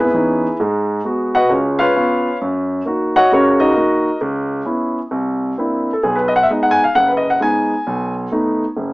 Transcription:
0.00 0.13 B3 medium
0.00 0.56 E4 medium
0.00 0.56 G#4 medium
0.00 0.56 B4 medium
0.14 0.46 E3 soft
0.14 0.46 B3 soft
0.14 0.46 C#4 soft
0.14 0.46 D#4 medium
0.60 0.99 G#2 medium
0.60 0.99 G#3 medium
1.05 1.36 G#3 soft
1.05 1.36 B3 soft
1.05 1.34 F#4 medium
1.35 1.50 F#4 medium
1.35 1.50 B4 medium
1.35 1.50 D#5 medium
1.35 1.50 F#5 medium
1.49 1.90 C#2 medium
1.49 1.79 C#4 soft
1.49 1.78 F4 soft
1.49 1.79 G#4 soft
1.49 1.79 C#5 medium
1.79 1.95 F4 medium
1.79 2.36 B4 medium
1.79 2.37 C#5 medium
1.79 2.36 F5 medium
1.96 2.28 B3 medium
1.96 2.27 C#4 soft
1.96 2.28 F4 medium
2.41 2.80 F#2 medium
2.85 3.17 A#3 medium
2.85 3.17 D#4 soft
2.85 3.15 F#4 medium
3.16 3.31 F#4 medium
3.16 3.31 C#5 medium
3.16 3.30 D#5 medium
3.16 3.31 F#5 loud
3.32 3.71 C#2 medium
3.32 3.70 C#3 medium
3.32 3.61 C#4 medium
3.32 3.59 F#4 medium
3.32 3.59 A#4 medium
3.32 3.61 C#5 medium
3.60 3.75 D#4 medium
3.60 3.76 F#4 medium
3.60 4.17 A#4 medium
3.60 4.17 D#5 medium
3.76 4.07 A#3 medium
3.76 4.08 D#4 soft
3.76 4.08 F#4 medium
4.21 4.60 C#2 medium
4.65 4.97 B3 soft
4.65 4.97 C#4 soft
4.65 4.98 E4 medium
5.11 5.51 C2 medium
5.58 5.90 A#3 soft
5.58 5.90 C4 soft
5.58 5.90 D4 soft
5.58 5.90 E4 medium
5.93 6.02 A4 medium
6.03 6.44 B1 medium
6.03 6.18 G#4 medium
6.16 6.32 B4 medium
6.28 6.31 D#5 medium
6.36 6.45 F#5 medium
6.43 6.49 E5 medium
6.50 6.82 G#3 medium
6.50 6.82 B3 soft
6.50 6.82 D#4 medium
6.50 6.65 D#5 medium
6.63 6.79 F#5 medium
6.71 6.83 G#5 medium
6.84 6.93 F5 medium
6.95 7.35 F#1 medium
6.95 7.10 F#5 medium
7.08 7.24 B4 medium
7.17 7.29 D#5 medium
7.30 7.39 F#5 medium
7.40 7.73 G#3 medium
7.40 7.73 B3 soft
7.40 7.73 D#4 medium
7.40 8.13 G#5 medium
7.87 8.26 B1 medium
8.32 8.63 A3 medium
8.32 8.63 B3 soft
8.32 8.63 D#4 medium
8.77 8.93 F#1 medium

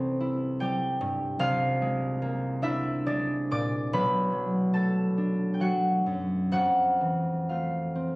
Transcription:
0.00 1.38 C2 medium
0.00 0.60 G3 medium
0.00 3.70 C4 medium
0.00 1.19 D4 soft
0.00 0.19 E4 medium
0.00 1.43 A4 medium
0.00 1.72 A5 loud
0.20 1.43 E4 medium
0.60 1.43 G3 medium
0.60 1.44 G4 medium
0.60 1.43 G5 medium
1.01 1.43 G2 medium
1.39 3.95 C2 medium
1.39 3.96 F4 medium
1.39 3.95 F5 loud
1.82 3.05 G#3 medium
2.22 3.96 A#3 medium
2.62 3.07 D4 medium
2.62 3.96 E4 medium
2.62 3.38 E5 loud
3.06 3.95 G#3 medium
3.06 5.16 D4 medium
3.06 3.51 D5 medium
3.51 3.95 A#2 medium
3.51 6.57 D5 medium
3.51 6.57 D6 loud
3.93 6.57 B1 medium
3.93 6.58 B4 medium
3.93 6.57 B5 loud
4.32 5.59 F#3 medium
4.73 7.48 A3 medium
4.73 8.16 A4 medium
4.73 8.16 A5 medium
5.18 6.57 D4 medium
5.54 5.66 G5 medium
5.60 6.56 F#3 medium
5.60 6.52 F#4 medium
5.60 6.51 F#5 medium
6.06 6.57 F#2 medium
6.52 8.16 F2 medium
6.52 8.16 F#4 medium
6.52 8.16 F#5 loud
7.01 8.16 E3 medium
7.49 8.16 A3 medium
7.49 8.16 F4 soft
7.49 8.16 F5 medium
7.95 8.16 C4 medium

